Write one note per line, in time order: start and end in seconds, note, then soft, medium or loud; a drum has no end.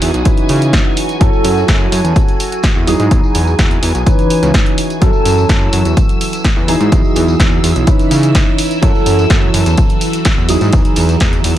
0.00 0.12 E2 loud
0.00 0.20 F#3 medium
0.00 0.21 D#4 medium
0.00 0.21 E4 medium
0.00 5.03 F#4 medium
0.00 0.21 G#4 medium
0.00 5.03 G#5 medium
0.00 open hi-hat medium
0.00 tambourine medium
0.14 0.23 B1 medium
0.14 closed hi-hat soft
0.14 tambourine soft
0.24 1.16 E3 medium
0.24 1.16 C#4 medium
0.24 1.16 D#4 medium
0.24 1.16 B4 medium
0.24 kick loud
0.24 closed hi-hat medium
0.24 tambourine medium
0.37 closed hi-hat soft
0.37 tambourine soft
0.49 0.82 C#3 loud
0.49 open hi-hat loud
0.49 tambourine medium
0.61 closed hi-hat medium
0.61 tambourine soft
0.73 kick loud
0.73 snare loud
0.73 closed hi-hat medium
0.73 tambourine medium
0.85 tambourine soft
0.97 open hi-hat medium
0.97 tambourine medium
1.09 closed hi-hat soft
1.09 tambourine soft
1.20 1.31 F#2 medium
1.20 2.82 F#3 medium
1.20 2.83 C#4 medium
1.20 2.83 E4 medium
1.20 2.83 A4 loud
1.20 kick loud
1.20 closed hi-hat medium
1.20 tambourine medium
1.33 tambourine soft
1.44 1.64 F#2 medium
1.44 open hi-hat loud
1.44 tambourine medium
1.57 tambourine soft
1.68 1.88 F#2 medium
1.68 kick loud
1.68 snare loud
1.68 closed hi-hat medium
1.80 tambourine soft
1.92 2.02 F#2 loud
1.92 open hi-hat medium
1.92 tambourine medium
2.04 2.14 E2 medium
2.04 closed hi-hat soft
2.04 tambourine soft
2.16 kick loud
2.16 closed hi-hat medium
2.16 tambourine medium
2.28 closed hi-hat soft
2.28 tambourine soft
2.40 open hi-hat loud
2.40 tambourine loud
2.52 closed hi-hat medium
2.52 tambourine soft
2.63 kick loud
2.63 snare loud
2.63 closed hi-hat medium
2.63 tambourine medium
2.76 2.95 E2 medium
2.76 tambourine soft
2.86 4.01 F#3 medium
2.86 4.02 D#4 medium
2.86 4.02 E4 medium
2.86 4.02 G#4 loud
2.86 open hi-hat medium
2.86 tambourine medium
2.99 3.09 G#2 medium
2.99 closed hi-hat soft
2.99 tambourine soft
3.11 3.21 E2 loud
3.11 kick loud
3.11 closed hi-hat medium
3.11 tambourine medium
3.23 tambourine soft
3.35 3.55 E2 medium
3.35 open hi-hat loud
3.35 tambourine loud
3.47 tambourine soft
3.59 3.78 E2 loud
3.59 kick loud
3.59 snare loud
3.59 closed hi-hat medium
3.59 tambourine medium
3.71 closed hi-hat soft
3.71 tambourine soft
3.83 3.93 E2 loud
3.83 open hi-hat medium
3.83 tambourine medium
3.95 4.04 B1 medium
3.95 closed hi-hat soft
3.95 tambourine soft
4.06 4.97 E3 medium
4.06 4.97 C#4 medium
4.06 4.97 D#4 medium
4.06 4.97 B4 medium
4.06 kick loud
4.06 closed hi-hat medium
4.06 tambourine medium
4.19 closed hi-hat soft
4.19 tambourine soft
4.30 open hi-hat loud
4.30 tambourine medium
4.43 4.52 C#2 loud
4.43 closed hi-hat soft
4.43 tambourine soft
4.54 kick loud
4.54 snare loud
4.54 closed hi-hat medium
4.54 tambourine medium
4.66 closed hi-hat soft
4.66 tambourine soft
4.78 open hi-hat loud
4.78 tambourine medium
4.90 closed hi-hat soft
4.90 tambourine soft
5.01 5.12 F#2 medium
5.01 11.58 E3 medium
5.01 6.63 F#3 medium
5.01 6.64 C#4 medium
5.01 6.64 E4 medium
5.01 6.64 A4 loud
5.01 11.58 E6 medium
5.01 kick loud
5.01 closed hi-hat medium
5.01 tambourine soft
5.13 tambourine soft
5.25 5.45 F#2 medium
5.25 open hi-hat loud
5.25 tambourine medium
5.38 tambourine soft
5.49 5.69 F#2 loud
5.49 kick loud
5.49 snare loud
5.49 closed hi-hat medium
5.49 tambourine medium
5.62 tambourine soft
5.73 5.83 F#2 loud
5.73 open hi-hat medium
5.73 tambourine medium
5.85 5.95 E2 medium
5.85 closed hi-hat soft
5.85 tambourine soft
5.97 kick loud
5.97 closed hi-hat medium
5.97 tambourine medium
6.09 closed hi-hat soft
6.09 tambourine soft
6.21 open hi-hat loud
6.21 tambourine medium
6.33 closed hi-hat soft
6.33 tambourine soft
6.44 kick loud
6.44 snare loud
6.44 closed hi-hat medium
6.57 6.76 E2 medium
6.57 tambourine soft
6.67 7.82 F#3 medium
6.67 7.83 D#4 medium
6.67 7.83 E4 medium
6.67 7.83 G#4 loud
6.67 open hi-hat medium
6.67 tambourine medium
6.80 6.90 G#2 medium
6.80 closed hi-hat soft
6.80 tambourine soft
6.92 7.02 E2 loud
6.92 kick loud
6.92 closed hi-hat medium
6.92 tambourine soft
7.05 tambourine soft
7.16 7.36 E2 medium
7.16 open hi-hat loud
7.16 tambourine medium
7.28 tambourine soft
7.40 7.59 E2 medium
7.40 kick loud
7.40 snare loud
7.40 closed hi-hat medium
7.52 tambourine soft
7.63 7.74 E2 medium
7.63 open hi-hat medium
7.63 tambourine medium
7.76 7.85 B1 medium
7.76 closed hi-hat soft
7.76 tambourine soft
7.87 8.78 E3 medium
7.87 8.78 C#4 medium
7.87 8.78 D#4 medium
7.87 8.78 B4 medium
7.87 kick loud
7.87 closed hi-hat medium
7.87 tambourine medium
7.99 closed hi-hat soft
7.99 tambourine soft
8.11 8.44 C#3 loud
8.11 open hi-hat loud
8.11 tambourine medium
8.23 closed hi-hat medium
8.23 tambourine soft
8.35 kick loud
8.35 snare loud
8.35 closed hi-hat medium
8.35 tambourine medium
8.47 tambourine soft
8.58 open hi-hat medium
8.58 tambourine medium
8.71 closed hi-hat soft
8.71 tambourine soft
8.81 8.93 F#2 loud
8.81 10.44 F#3 medium
8.81 10.44 C#4 medium
8.81 10.45 E4 medium
8.81 10.45 A4 loud
8.81 kick loud
8.81 closed hi-hat medium
8.81 tambourine soft
8.95 tambourine soft
9.06 9.26 F#2 medium
9.06 open hi-hat loud
9.06 tambourine medium
9.19 tambourine soft
9.30 9.50 F#2 loud
9.30 kick loud
9.30 snare loud
9.30 closed hi-hat medium
9.30 tambourine soft
9.42 tambourine soft
9.54 9.64 F#2 loud
9.54 open hi-hat medium
9.54 tambourine medium
9.66 9.76 E2 medium
9.66 closed hi-hat medium
9.66 tambourine soft
9.78 kick loud
9.78 closed hi-hat medium
9.78 tambourine medium
9.89 closed hi-hat soft
9.89 tambourine soft
10.01 open hi-hat medium
10.01 tambourine medium
10.13 closed hi-hat medium
10.13 tambourine soft
10.25 kick loud
10.25 snare loud
10.25 closed hi-hat medium
10.25 tambourine medium
10.38 10.57 E2 medium
10.38 tambourine soft
10.48 11.58 F#3 medium
10.48 11.58 D#4 medium
10.48 11.58 E4 medium
10.48 11.58 G#4 medium
10.48 open hi-hat medium
10.48 tambourine medium
10.61 10.71 G#2 loud
10.61 closed hi-hat soft
10.61 tambourine soft
10.73 10.83 E2 loud
10.73 kick loud
10.73 closed hi-hat medium
10.73 tambourine soft
10.85 closed hi-hat soft
10.85 tambourine soft
10.96 11.17 E2 medium
10.96 open hi-hat loud
10.96 tambourine medium
11.09 closed hi-hat soft
11.09 tambourine soft
11.20 11.40 E2 loud
11.20 kick loud
11.20 snare loud
11.20 closed hi-hat medium
11.20 tambourine soft
11.33 closed hi-hat soft
11.33 tambourine soft
11.44 11.55 E2 loud
11.44 open hi-hat medium
11.44 tambourine medium